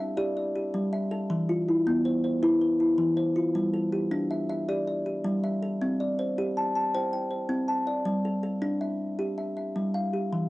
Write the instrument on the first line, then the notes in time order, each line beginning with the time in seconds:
kalimba
0.00 E5
0.17 G4 D5
0.37 D5
0.56 G4
0.74 G3
0.93 E5
1.11 A4
1.30 E3
1.49 F4
1.69 E4
1.87 B3
2.05 C5
2.24 C5
2.43 E4 B4
2.61 B4
2.80 E4
2.98 E3
3.17 C5
3.36 F4
3.55 G3
3.74 A4
3.92 G4
4.11 D4
4.31 E5
4.50 E5
4.69 G4 D5
4.87 D5
5.06 G4
5.24 G3
5.44 E5
5.63 A4
5.82 C4
6.00 D5
6.19 C5
6.38 G4
6.57 A5
6.75 A5
6.94 C5 G5
7.13 G5
7.31 C5
7.49 C4
7.68 A5
7.87 D5
8.05 G3
8.25 A4
8.43 A4
8.62 D4
8.81 E5
9.19 G4
9.38 E5
9.57 E5
9.76 G3
9.94 F5
10.13 G4
10.33 E3